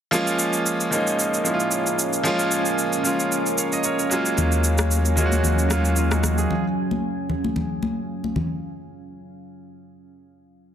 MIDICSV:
0, 0, Header, 1, 5, 480
1, 0, Start_track
1, 0, Key_signature, -6, "minor"
1, 0, Tempo, 530973
1, 117, Time_signature, 4, 2, 24, 8
1, 9714, End_track
2, 0, Start_track
2, 0, Title_t, "Ambient pad"
2, 0, Program_c, 0, 92
2, 116, Note_on_c, 0, 61, 83
2, 116, Note_on_c, 0, 77, 73
2, 116, Note_on_c, 0, 80, 86
2, 117, Note_on_c, 0, 70, 71
2, 2017, Note_off_c, 0, 80, 0
2, 2036, Note_on_c, 0, 82, 88
2, 3681, Note_off_c, 0, 61, 0
2, 3681, Note_off_c, 0, 70, 0
2, 3700, Note_off_c, 0, 82, 0
2, 3718, Note_on_c, 0, 54, 76
2, 3718, Note_on_c, 0, 61, 82
2, 3718, Note_on_c, 0, 80, 87
2, 7760, Note_off_c, 0, 77, 0
2, 7761, Note_off_c, 0, 54, 0
2, 7761, Note_off_c, 0, 61, 0
2, 7761, Note_off_c, 0, 80, 0
2, 9714, End_track
3, 0, Start_track
3, 0, Title_t, "Grand piano"
3, 0, Program_c, 1, 0
3, 100, Note_on_c, 1, 53, 104
3, 108, Note_on_c, 1, 56, 94
3, 117, Note_on_c, 1, 58, 101
3, 126, Note_on_c, 1, 61, 98
3, 133, Note_on_c, 1, 65, 117
3, 291, Control_c, 1, 64, 127
3, 694, Note_off_c, 1, 53, 0
3, 698, Note_off_c, 1, 56, 0
3, 702, Note_off_c, 1, 58, 0
3, 707, Note_off_c, 1, 61, 0
3, 711, Note_off_c, 1, 65, 0
3, 820, Note_on_c, 1, 53, 80
3, 829, Note_on_c, 1, 56, 73
3, 836, Note_on_c, 1, 58, 72
3, 844, Note_on_c, 1, 61, 73
3, 853, Note_on_c, 1, 63, 85
3, 1222, Note_off_c, 1, 53, 0
3, 1226, Note_off_c, 1, 56, 0
3, 1230, Note_off_c, 1, 58, 0
3, 1234, Note_off_c, 1, 61, 0
3, 1238, Note_off_c, 1, 63, 0
3, 1299, Note_on_c, 1, 53, 77
3, 1307, Note_on_c, 1, 56, 66
3, 1315, Note_on_c, 1, 58, 67
3, 1324, Note_on_c, 1, 61, 65
3, 1332, Note_on_c, 1, 64, 63
3, 1388, Note_off_c, 1, 64, 0
3, 1390, Note_on_c, 1, 65, 81
3, 1894, Note_off_c, 1, 53, 0
3, 1898, Note_off_c, 1, 56, 0
3, 1902, Note_off_c, 1, 58, 0
3, 1906, Note_off_c, 1, 61, 0
3, 1939, Note_off_c, 1, 65, 0
3, 2020, Note_on_c, 1, 53, 109
3, 2028, Note_on_c, 1, 56, 99
3, 2036, Note_on_c, 1, 58, 96
3, 2045, Note_on_c, 1, 61, 98
3, 2053, Note_on_c, 1, 65, 121
3, 2614, Note_off_c, 1, 53, 0
3, 2618, Note_off_c, 1, 56, 0
3, 2622, Note_off_c, 1, 58, 0
3, 2626, Note_off_c, 1, 61, 0
3, 2631, Note_off_c, 1, 65, 0
3, 2741, Note_on_c, 1, 53, 78
3, 2749, Note_on_c, 1, 56, 72
3, 2757, Note_on_c, 1, 58, 74
3, 2765, Note_on_c, 1, 61, 70
3, 2774, Note_on_c, 1, 65, 91
3, 3142, Note_off_c, 1, 53, 0
3, 3146, Note_off_c, 1, 56, 0
3, 3150, Note_off_c, 1, 58, 0
3, 3155, Note_off_c, 1, 61, 0
3, 3159, Note_off_c, 1, 65, 0
3, 3239, Note_on_c, 1, 77, 62
3, 3244, Note_on_c, 1, 73, 54
3, 3363, Note_off_c, 1, 77, 0
3, 3366, Note_off_c, 1, 73, 0
3, 3370, Note_on_c, 1, 75, 71
3, 3472, Note_off_c, 1, 75, 0
3, 3479, Note_on_c, 1, 73, 70
3, 3485, Note_on_c, 1, 70, 58
3, 3597, Note_off_c, 1, 70, 0
3, 3603, Note_off_c, 1, 73, 0
3, 3610, Note_on_c, 1, 70, 59
3, 3703, Note_on_c, 1, 54, 88
3, 3712, Note_on_c, 1, 56, 76
3, 3719, Note_on_c, 1, 58, 79
3, 3728, Control_c, 1, 64, 0
3, 3728, Note_on_c, 1, 61, 79
3, 3736, Note_on_c, 1, 65, 97
3, 3838, Note_off_c, 1, 70, 0
3, 3899, Control_c, 1, 64, 127
3, 4483, Note_off_c, 1, 54, 0
3, 4487, Note_off_c, 1, 56, 0
3, 4491, Note_off_c, 1, 58, 0
3, 4495, Note_off_c, 1, 61, 0
3, 4499, Note_off_c, 1, 65, 0
3, 4662, Note_on_c, 1, 54, 76
3, 4671, Note_on_c, 1, 56, 75
3, 4679, Note_on_c, 1, 58, 73
3, 4687, Note_on_c, 1, 61, 75
3, 4696, Note_on_c, 1, 65, 68
3, 4750, Note_off_c, 1, 65, 0
3, 4753, Note_on_c, 1, 66, 88
3, 5063, Note_off_c, 1, 54, 0
3, 5067, Note_off_c, 1, 56, 0
3, 5071, Note_off_c, 1, 58, 0
3, 5075, Note_off_c, 1, 61, 0
3, 5108, Note_off_c, 1, 66, 0
3, 5142, Note_on_c, 1, 54, 72
3, 5150, Note_on_c, 1, 56, 69
3, 5158, Note_on_c, 1, 58, 68
3, 5166, Note_on_c, 1, 61, 67
3, 5175, Note_on_c, 1, 65, 85
3, 5385, Note_off_c, 1, 65, 0
3, 5391, Note_off_c, 1, 61, 0
3, 5399, Note_on_c, 1, 65, 67
3, 5404, Note_on_c, 1, 61, 54
3, 5523, Note_off_c, 1, 65, 0
3, 5526, Note_off_c, 1, 61, 0
3, 5531, Note_on_c, 1, 66, 69
3, 5537, Note_on_c, 1, 63, 57
3, 5735, Note_off_c, 1, 54, 0
3, 5739, Note_off_c, 1, 56, 0
3, 5743, Note_off_c, 1, 58, 0
3, 5758, Note_off_c, 1, 66, 0
3, 5761, Note_off_c, 1, 63, 0
3, 5771, Note_on_c, 1, 68, 64
3, 5776, Note_on_c, 1, 65, 56
3, 5890, Control_c, 1, 64, 0
3, 5998, Note_off_c, 1, 68, 0
3, 6001, Note_off_c, 1, 65, 0
3, 9714, End_track
4, 0, Start_track
4, 0, Title_t, "Sub bass"
4, 0, Program_c, 2, 38
4, 3956, Note_on_c, 2, 39, 82
4, 5840, Note_off_c, 2, 39, 0
4, 9714, End_track
5, 0, Start_track
5, 0, Title_t, "Drums"
5, 116, Note_on_c, 9, 82, 59
5, 206, Note_off_c, 9, 82, 0
5, 245, Note_on_c, 9, 82, 50
5, 335, Note_off_c, 9, 82, 0
5, 354, Note_on_c, 9, 82, 82
5, 444, Note_off_c, 9, 82, 0
5, 481, Note_on_c, 9, 82, 54
5, 571, Note_off_c, 9, 82, 0
5, 599, Note_on_c, 9, 82, 72
5, 689, Note_off_c, 9, 82, 0
5, 728, Note_on_c, 9, 82, 54
5, 818, Note_off_c, 9, 82, 0
5, 836, Note_on_c, 9, 82, 83
5, 926, Note_off_c, 9, 82, 0
5, 969, Note_on_c, 9, 82, 49
5, 1059, Note_off_c, 9, 82, 0
5, 1080, Note_on_c, 9, 82, 76
5, 1170, Note_off_c, 9, 82, 0
5, 1210, Note_on_c, 9, 82, 46
5, 1300, Note_off_c, 9, 82, 0
5, 1315, Note_on_c, 9, 82, 87
5, 1405, Note_off_c, 9, 82, 0
5, 1446, Note_on_c, 9, 82, 50
5, 1537, Note_off_c, 9, 82, 0
5, 1548, Note_on_c, 9, 82, 79
5, 1638, Note_off_c, 9, 82, 0
5, 1686, Note_on_c, 9, 82, 51
5, 1777, Note_off_c, 9, 82, 0
5, 1799, Note_on_c, 9, 82, 90
5, 1889, Note_off_c, 9, 82, 0
5, 1926, Note_on_c, 9, 82, 52
5, 2016, Note_off_c, 9, 82, 0
5, 2035, Note_on_c, 9, 82, 58
5, 2125, Note_off_c, 9, 82, 0
5, 2163, Note_on_c, 9, 82, 54
5, 2254, Note_off_c, 9, 82, 0
5, 2273, Note_on_c, 9, 82, 79
5, 2363, Note_off_c, 9, 82, 0
5, 2400, Note_on_c, 9, 82, 55
5, 2491, Note_off_c, 9, 82, 0
5, 2518, Note_on_c, 9, 82, 71
5, 2608, Note_off_c, 9, 82, 0
5, 2647, Note_on_c, 9, 82, 53
5, 2738, Note_off_c, 9, 82, 0
5, 2757, Note_on_c, 9, 82, 80
5, 2847, Note_off_c, 9, 82, 0
5, 2890, Note_on_c, 9, 82, 52
5, 2981, Note_off_c, 9, 82, 0
5, 3001, Note_on_c, 9, 82, 76
5, 3092, Note_off_c, 9, 82, 0
5, 3130, Note_on_c, 9, 82, 45
5, 3221, Note_off_c, 9, 82, 0
5, 3237, Note_on_c, 9, 82, 94
5, 3327, Note_off_c, 9, 82, 0
5, 3367, Note_on_c, 9, 82, 51
5, 3457, Note_off_c, 9, 82, 0
5, 3469, Note_on_c, 9, 82, 80
5, 3559, Note_off_c, 9, 82, 0
5, 3608, Note_on_c, 9, 82, 52
5, 3698, Note_off_c, 9, 82, 0
5, 3719, Note_on_c, 9, 82, 95
5, 3810, Note_off_c, 9, 82, 0
5, 3848, Note_on_c, 9, 82, 54
5, 3938, Note_off_c, 9, 82, 0
5, 3958, Note_on_c, 9, 82, 59
5, 3960, Note_on_c, 9, 64, 69
5, 4048, Note_off_c, 9, 82, 0
5, 4050, Note_off_c, 9, 64, 0
5, 4085, Note_on_c, 9, 82, 52
5, 4176, Note_off_c, 9, 82, 0
5, 4195, Note_on_c, 9, 82, 81
5, 4285, Note_off_c, 9, 82, 0
5, 4321, Note_on_c, 9, 82, 59
5, 4328, Note_on_c, 9, 37, 86
5, 4328, Note_on_c, 9, 63, 70
5, 4412, Note_off_c, 9, 82, 0
5, 4418, Note_off_c, 9, 37, 0
5, 4418, Note_off_c, 9, 63, 0
5, 4439, Note_on_c, 9, 82, 73
5, 4530, Note_off_c, 9, 82, 0
5, 4569, Note_on_c, 9, 82, 54
5, 4659, Note_off_c, 9, 82, 0
5, 4674, Note_on_c, 9, 64, 64
5, 4677, Note_on_c, 9, 82, 87
5, 4764, Note_off_c, 9, 64, 0
5, 4767, Note_off_c, 9, 82, 0
5, 4810, Note_on_c, 9, 63, 72
5, 4810, Note_on_c, 9, 82, 50
5, 4900, Note_off_c, 9, 63, 0
5, 4901, Note_off_c, 9, 82, 0
5, 4916, Note_on_c, 9, 64, 74
5, 4922, Note_on_c, 9, 82, 77
5, 5006, Note_off_c, 9, 64, 0
5, 5012, Note_off_c, 9, 82, 0
5, 5051, Note_on_c, 9, 82, 47
5, 5141, Note_off_c, 9, 82, 0
5, 5155, Note_on_c, 9, 63, 67
5, 5158, Note_on_c, 9, 82, 93
5, 5159, Note_on_c, 9, 37, 85
5, 5245, Note_off_c, 9, 63, 0
5, 5248, Note_off_c, 9, 82, 0
5, 5249, Note_off_c, 9, 37, 0
5, 5289, Note_on_c, 9, 82, 52
5, 5379, Note_off_c, 9, 82, 0
5, 5389, Note_on_c, 9, 82, 75
5, 5479, Note_off_c, 9, 82, 0
5, 5528, Note_on_c, 9, 37, 88
5, 5528, Note_on_c, 9, 82, 51
5, 5530, Note_on_c, 9, 63, 56
5, 5618, Note_off_c, 9, 37, 0
5, 5618, Note_off_c, 9, 82, 0
5, 5620, Note_off_c, 9, 63, 0
5, 5637, Note_on_c, 9, 37, 87
5, 5638, Note_on_c, 9, 63, 47
5, 5638, Note_on_c, 9, 64, 64
5, 5639, Note_on_c, 9, 82, 95
5, 5727, Note_off_c, 9, 37, 0
5, 5729, Note_off_c, 9, 63, 0
5, 5729, Note_off_c, 9, 64, 0
5, 5729, Note_off_c, 9, 82, 0
5, 5767, Note_on_c, 9, 82, 53
5, 5857, Note_off_c, 9, 82, 0
5, 5880, Note_on_c, 9, 64, 72
5, 5971, Note_off_c, 9, 64, 0
5, 6248, Note_on_c, 9, 63, 67
5, 6339, Note_off_c, 9, 63, 0
5, 6595, Note_on_c, 9, 64, 66
5, 6685, Note_off_c, 9, 64, 0
5, 6730, Note_on_c, 9, 63, 71
5, 6820, Note_off_c, 9, 63, 0
5, 6835, Note_on_c, 9, 64, 72
5, 6925, Note_off_c, 9, 64, 0
5, 7074, Note_on_c, 9, 63, 66
5, 7165, Note_off_c, 9, 63, 0
5, 7450, Note_on_c, 9, 63, 54
5, 7540, Note_off_c, 9, 63, 0
5, 7557, Note_on_c, 9, 63, 45
5, 7557, Note_on_c, 9, 64, 64
5, 7647, Note_off_c, 9, 63, 0
5, 7647, Note_off_c, 9, 64, 0
5, 9714, End_track
0, 0, End_of_file